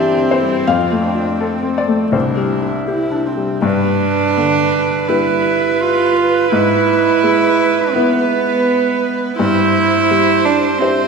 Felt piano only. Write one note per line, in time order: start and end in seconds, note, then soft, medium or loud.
0.00 0.70 E3 medium
0.00 0.42 G3 medium
0.00 0.17 C4 medium
0.00 0.69 E4 medium
0.00 0.70 G4 medium
0.00 0.26 D5 loud
0.00 0.69 E5 medium
0.17 0.57 C4 medium
0.31 0.65 C5 medium
0.42 0.67 G3 medium
0.67 2.10 F2 medium
0.67 1.73 F5 medium
0.92 1.30 A3 soft
1.15 1.54 F4 medium
1.40 1.79 A4 medium
1.63 2.03 C4 soft
1.78 2.12 D5 medium
1.88 2.14 A3 soft
2.12 3.59 C2 medium
2.12 3.22 C5 medium
2.37 2.78 G3 soft
2.62 3.03 E4 soft
2.88 3.28 G4 soft
3.11 3.53 D4 soft
3.37 3.63 G3 soft
3.62 6.47 G2 medium
4.37 5.52 D3 medium
5.09 6.48 G3 medium
5.09 6.48 G4 medium
5.09 6.48 B4 medium
6.52 9.34 G#2 medium
7.23 8.36 G#3 medium
7.95 9.35 B3 medium
7.95 9.35 E4 medium
7.95 9.35 B4 medium
9.39 11.08 G2 medium
10.11 11.08 G3 medium
10.80 11.08 E4 medium
10.80 11.08 G4 medium
10.80 11.08 C5 medium